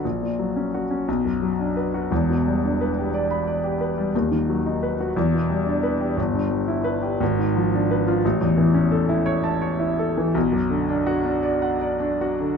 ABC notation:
X:1
M:6/8
L:1/16
Q:3/8=58
K:Edor
V:1 name="Grand piano"
^A,,, ^A,, F, C F C B,,, F,, F, D B F | [E,,,E,,] B,, G, D B G d b d G B G, | [^D,,,^D,,] ^D, F, ^D B F E,, B,, G, =D B G | [K:Bm] G,,, G,, G, E B G ^G,,, ^G,, ^E, D B ^E |
A,,, E,, E, C A E c a c E A E, | B,,, F,, D, D F D d f d D F D, |]